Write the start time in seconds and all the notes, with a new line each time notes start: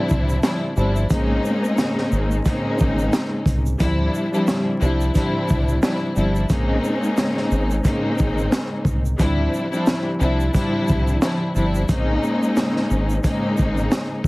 Already playing: F3 G3 C4 D4 E4
0.09 C2, kick, shaker
0.29 shaker
0.42 F3 G3 C4 D4 E4, snare, closed hi-hat, shaker
0.75 G1 F3 G3 C4 D4 E4, shaker
0.96 shaker
1.09 A#1 G#3 A#3 C4 C#4 D#4, kick, closed hi-hat, shaker
1.45 shaker
1.64 shaker
1.78 snare, closed hi-hat, shaker
1.98 snare
2.12 G#1, shaker
2.31 shaker
2.44 G#3 A#3 C4 C#4 D#4, kick, closed hi-hat, shaker
2.79 G#1, kick, shaker
2.99 shaker
3.13 snare, closed hi-hat, shaker
3.46 C2, kick, closed hi-hat, shaker
3.66 shaker
3.78 D2 F3 G3 C4 D4 E4, kick, closed hi-hat, shaker
4.15 shaker
4.31 F3 G3 C4 D4 E4, shaker
4.48 snare, closed hi-hat, shaker
4.79 C2 F3 G3 C4 D4 E4, shaker
5.01 shaker
5.13 F3 G3 C4 D4 E4, kick, closed hi-hat, shaker
5.48 C2, kick, shaker
5.68 shaker
5.82 F3 G3 C4 D4 E4, snare, closed hi-hat, shaker
6.14 G1 F3 G3 C4 D4 E4, shaker
6.36 shaker
6.48 A#1 G#3 A#3 C4 C#4 D#4, kick, closed hi-hat, shaker
6.84 shaker
7.04 shaker
7.17 snare, closed hi-hat, shaker
7.37 snare
7.51 G#1, shaker
7.71 shaker
7.83 G#3 A#3 C4 C#4 D#4, kick, closed hi-hat, shaker
8.18 G#1, kick, shaker
8.38 shaker
8.52 snare, closed hi-hat, shaker
8.85 C2, kick, shaker
9.05 shaker
9.18 D2 F3 G3 C4 D4 E4, kick, closed hi-hat, shaker
9.54 shaker
9.71 F3 G3 C4 D4 E4, shaker
9.87 snare, closed hi-hat, shaker
10.18 C2 F3 G3 C4 D4 E4, shaker
10.40 shaker
10.52 F3 G3 C4 D4 E4, kick, closed hi-hat, shaker
10.88 C2, kick, shaker
11.08 shaker
11.21 F3 G3 C4 D4 E4, snare, closed hi-hat, shaker
11.53 G1 F3 G3 C4 D4 E4, shaker
11.75 shaker
11.87 A#1 G#3 A#3 C4 C#4 D#4, kick, closed hi-hat, shaker
12.24 shaker
12.43 shaker
12.56 snare, closed hi-hat, shaker
12.76 snare
12.90 G#1, shaker
13.10 shaker
13.23 G#3 A#3 C4 C#4 D#4, kick, closed hi-hat, shaker
13.57 G#1, kick, shaker
13.77 shaker
13.92 snare, closed hi-hat, shaker
14.24 C2, kick